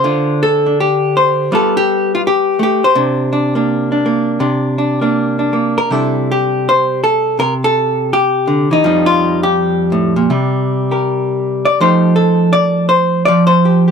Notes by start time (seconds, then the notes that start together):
Already playing: C5
0.04 D3 D4 F4
0.43 A4
0.66 D4
0.80 G4
1.17 C5
1.52 G3 B3 F4 A4
1.77 G4
2.15 F4
2.27 G4
2.59 A3 G4
2.84 C5
2.95 C3 D4
3.33 D4
3.55 A#3 D4
3.92 D4
4.06 A#3
4.40 C3 D4
4.78 D4
5.01 A#3 D4
5.39 D4
5.53 A#3
5.78 A#4
5.91 C3 G3 D4 E4 A4
6.32 G4
6.69 C5
7.04 A4
7.39 C3 A#4
7.64 A4
8.13 G4
8.47 D3
8.71 E3 D#4
8.84 F2 F3 G3 D#4
9.06 F4
9.43 G4
9.92 A2
10.16 A#2
10.30 C3 G3
10.91 G4 A#4
11.65 D5
11.80 F3 A3 D#4 G4 C5
12.16 A4
12.53 D5
12.89 C5
13.25 F3 D5
13.47 C5
13.65 G4
13.88 G4